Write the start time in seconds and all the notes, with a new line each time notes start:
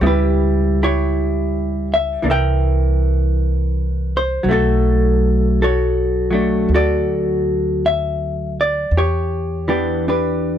0.01 C#2 G3 B3 E4
0.06 E4 G4 B4
0.83 E4 G4 C#5
1.94 E5
2.22 C2 E3 A#3 D4
2.30 A#4 E5 G5
4.17 C5
4.43 B1 F#3
4.49 A3 F#4 A4
5.62 F#4 A4 C#5
6.31 F#3 A3 D4
6.69 D2
6.74 F#4 A4 D5
7.86 E5
8.61 D5
8.91 E2
8.97 G4 C#5
9.68 E3 B3 D4 G4
10.08 D4 G4 B4